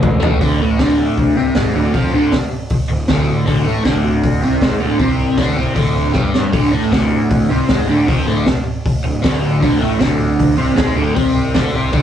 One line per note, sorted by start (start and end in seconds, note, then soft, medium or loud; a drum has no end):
0.00 0.39 C#2 loud
0.00 0.20 A2 medium
0.00 0.21 E3 medium
0.00 0.19 A3 medium
0.00 kick loud
0.00 mid tom medium
0.20 0.40 E3 medium
0.20 0.39 A3 medium
0.20 floor tom loud
0.25 0.40 A2 medium
0.41 0.59 D1 loud
0.41 0.60 D2 medium
0.41 0.60 D3 medium
0.41 kick loud
0.41 open hi-hat medium
0.61 0.79 A1 medium
0.61 0.78 A2 medium
0.61 0.79 A3 loud
0.79 1.33 D1 loud
0.79 1.36 D2 medium
0.79 1.36 D3 medium
0.79 kick loud
0.79 snare loud
0.79 open hi-hat medium
1.18 kick loud
1.18 open hi-hat soft
1.36 1.55 C2 medium
1.36 1.55 C3 medium
1.36 1.55 C4 medium
1.55 1.73 G#1 medium
1.55 1.73 G#2 medium
1.55 1.74 G#3 medium
1.55 kick loud
1.55 snare loud
1.55 open hi-hat medium
1.73 1.93 D1 medium
1.73 1.93 D2 medium
1.73 1.93 D3 medium
1.94 2.12 F1 medium
1.94 2.12 F2 medium
1.94 2.13 F3 medium
1.94 kick loud
1.94 open hi-hat medium
2.12 2.31 D1 medium
2.12 2.31 D2 loud
2.12 2.32 D3 loud
2.32 kick medium
2.32 snare loud
2.32 open hi-hat medium
2.70 kick loud
2.70 open hi-hat medium
2.90 3.08 D1 medium
2.90 3.05 D2 medium
3.08 3.45 D1 loud
3.08 3.45 D2 medium
3.08 3.46 D3 medium
3.08 kick loud
3.08 snare loud
3.08 open hi-hat medium
3.46 3.65 D1 medium
3.46 3.64 D2 medium
3.46 3.66 D3 loud
3.46 kick medium
3.46 open hi-hat soft
3.65 3.84 A1 medium
3.65 3.83 A2 medium
3.65 3.85 A3 loud
3.84 4.39 D1 loud
3.84 4.41 D2 medium
3.84 4.42 D3 medium
3.84 kick loud
3.84 snare loud
3.84 open hi-hat medium
4.24 kick loud
4.24 open hi-hat medium
4.42 4.61 C2 loud
4.42 4.61 C3 medium
4.42 4.62 C4 medium
4.62 4.80 G#1 medium
4.62 4.79 G#2 medium
4.62 4.80 G#3 medium
4.62 kick loud
4.62 snare loud
4.62 open hi-hat medium
4.80 4.99 D1 loud
4.80 4.98 D2 medium
4.80 4.99 D3 loud
4.99 5.36 C2 medium
4.99 5.37 C3 medium
4.99 5.38 C4 loud
4.99 kick loud
4.99 open hi-hat soft
5.37 5.56 D2 loud
5.37 5.57 D3 medium
5.37 5.57 D4 medium
5.37 kick loud
5.37 snare loud
5.37 open hi-hat medium
5.57 5.75 C2 loud
5.57 5.75 C3 loud
5.57 5.76 C4 medium
5.75 6.12 D1 medium
5.75 6.13 D2 medium
5.75 6.13 D3 medium
5.75 kick loud
5.75 open hi-hat medium
6.13 6.51 G1 medium
6.13 6.52 G2 medium
6.13 6.52 G3 medium
6.13 kick loud
6.13 snare medium
6.34 snare loud
6.52 6.72 D1 loud
6.52 6.71 D2 medium
6.52 6.72 D3 medium
6.52 kick medium
6.52 open hi-hat medium
6.71 6.91 A1 medium
6.71 6.91 A2 medium
6.71 6.92 A3 loud
6.91 7.47 D1 loud
6.91 7.49 D2 medium
6.91 7.50 D3 medium
6.91 kick loud
6.91 snare medium
6.91 open hi-hat medium
7.30 kick loud
7.30 open hi-hat medium
7.50 7.68 C2 loud
7.50 7.69 C3 medium
7.50 7.69 C4 medium
7.69 7.88 G#1 medium
7.69 7.88 G#2 medium
7.69 7.88 G#3 medium
7.69 kick loud
7.69 snare loud
7.69 open hi-hat medium
7.88 8.07 D1 medium
7.88 8.07 D2 medium
7.88 8.08 D3 loud
8.08 8.26 F1 medium
8.08 8.27 F2 medium
8.08 8.27 F3 loud
8.08 kick loud
8.08 open hi-hat medium
8.27 8.45 D1 medium
8.27 8.46 D2 loud
8.27 8.46 D3 loud
8.46 kick loud
8.46 snare loud
8.46 open hi-hat soft
8.86 kick loud
8.86 open hi-hat medium
9.04 9.23 D1 medium
9.04 9.20 D2 medium
9.22 9.60 D1 loud
9.22 9.60 D2 medium
9.22 9.61 D3 loud
9.22 kick loud
9.22 snare loud
9.22 open hi-hat medium
9.61 9.80 D1 medium
9.61 9.80 D2 medium
9.61 9.81 D3 loud
9.61 kick loud
9.61 open hi-hat medium
9.80 10.00 A1 medium
9.80 9.98 A2 medium
9.80 10.00 A3 loud
9.99 10.55 D1 loud
9.99 10.57 D2 medium
9.99 10.58 D3 loud
9.99 kick loud
9.99 snare loud
9.99 open hi-hat medium
10.39 kick loud
10.39 open hi-hat medium
10.57 10.77 C2 medium
10.57 10.75 C3 medium
10.57 10.76 C4 medium
10.76 10.95 G#1 loud
10.76 10.95 G#2 medium
10.76 10.96 G#3 medium
10.76 kick loud
10.76 snare loud
10.76 open hi-hat medium
10.95 11.14 D1 loud
10.95 11.15 D2 medium
10.95 11.15 D3 medium
11.15 11.52 C2 medium
11.15 11.54 C3 medium
11.15 11.54 C4 loud
11.15 kick loud
11.15 open hi-hat medium
11.54 11.73 D2 loud
11.54 11.74 D3 medium
11.54 11.74 D4 medium
11.54 kick loud
11.54 snare loud
11.54 open hi-hat medium
11.74 11.92 C2 medium
11.74 11.91 C3 medium
11.74 11.92 C4 loud
11.92 12.02 D1 medium
11.92 12.02 D2 medium
11.92 12.02 D3 loud
11.92 kick loud
11.92 open hi-hat medium